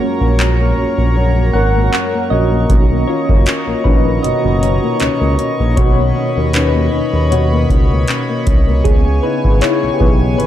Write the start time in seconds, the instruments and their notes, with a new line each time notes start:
Already playing: nylon-string guitar F#2 A#3, synth keys G#3 A#3 C#4 F4 F#4 A#4, analog synth pad A#4 C#5 A#5 C#6
0.01 nylon-string guitar C#4
0.21 analog synth bass A#1, nylon-string guitar A#3
0.39 nylon-string guitar C#4, clap
0.60 nylon-string guitar A#3
0.77 analog synth bass A#1, nylon-string guitar C#4
0.98 analog synth bass A#1, nylon-string guitar A#3
1.16 nylon-string guitar F#2
1.37 nylon-string guitar A#3
1.53 analog synth bass G#1, nylon-string guitar C#4, synth keys A#4 F#5
1.75 nylon-string guitar A#3
1.93 nylon-string guitar C#4, clap
2.14 nylon-string guitar A#3
2.30 analog synth bass A#1, nylon-string guitar C#4, synth keys F#4 D#5
2.52 nylon-string guitar A#3
2.69 analog synth bass B1, synth keys D#3 A#3 C#4, analog synth pad C#5 D#5 A#5, kick, closed hi-hat
2.91 nylon-string guitar A#3
3.07 nylon-string guitar C#4, synth keys F4 C#5
3.29 analog synth bass F#1, nylon-string guitar A#3, kick
3.46 nylon-string guitar C#4, clap, closed hi-hat
3.67 analog synth bass A#1, nylon-string guitar A#3
3.84 analog synth bass A#1, synth keys A#2 D#3 C#4 D#4 B4, nylon-string guitar C#4, kick
4.06 nylon-string guitar A#3
4.23 analog synth bass F#1, nylon-string guitar B2, synth keys F#4 D#5, closed hi-hat
4.44 analog synth bass F#1, nylon-string guitar A#3
4.62 nylon-string guitar C#4, closed hi-hat
4.83 nylon-string guitar A#3
5.00 analog synth bass C#2, nylon-string guitar C#4, clap, closed hi-hat
5.21 analog synth bass C#2, nylon-string guitar A#3
5.39 nylon-string guitar C#4, closed hi-hat
5.59 analog synth bass A#1, nylon-string guitar A#3
5.76 analog synth bass B1, nylon-string guitar B2, synth keys D#3 A#3 C#4 F#4 C#5, analog synth pad B5, kick, closed hi-hat
5.98 nylon-string guitar A#3
6.16 nylon-string guitar C#4
6.36 analog synth bass D#2, nylon-string guitar A#3
6.47 synth keys C#5
6.53 nylon-string guitar C#4, synth keys D#4 B4, clap, closed hi-hat
6.75 nylon-string guitar A#3
6.93 analog synth bass D#2, nylon-string guitar C#4
7.13 analog synth bass D#2, nylon-string guitar A#3
7.30 nylon-string guitar B2, synth keys F#4 C#5, closed hi-hat
7.52 nylon-string guitar A#3
7.69 analog synth bass C#2, nylon-string guitar C#4, kick, closed hi-hat
7.91 nylon-string guitar A#3
8.08 nylon-string guitar C#4, clap, closed hi-hat
8.29 nylon-string guitar A#3
8.46 analog synth bass C2, nylon-string guitar C#4, kick, closed hi-hat
8.67 nylon-string guitar A#3
8.84 analog synth bass C#2, nylon-string guitar C#3, synth keys B3 G#4, analog synth pad G#5 C#6, kick, closed hi-hat
9.06 nylon-string guitar B3
9.23 synth keys D#4 B4, nylon-string guitar E4
9.44 analog synth bass G#1, nylon-string guitar B3, kick
9.61 nylon-string guitar E4, synth keys E4 C#5, clap, closed hi-hat
9.83 analog synth bass B1, nylon-string guitar B3
9.93 synth keys G4
10.00 analog synth bass B1, synth keys E3 B3 D#4 G#4, nylon-string guitar E4, kick
10.21 nylon-string guitar B3
10.38 analog synth bass G#1, nylon-string guitar C#3, synth keys E4 B4, closed hi-hat